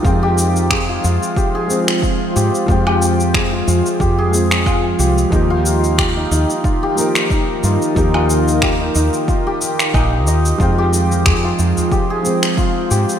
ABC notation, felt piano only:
X:1
M:4/4
L:1/8
Q:"Swing 16ths" 1/4=91
K:Fm
V:1 name="Felt piano"
[F,A,Cg]4- [F,A,Cg] [F,A,C]3 | [F,A,Cg]4- [F,A,Cg] [F,A,C]3 | [F,B,EG]4- [F,B,EG] [F,B,EB]3 | [F,B,EG]4- [F,B,EG] z3 |
[F,A,Cg]4- [F,A,Cg] [F,A,C]3 |]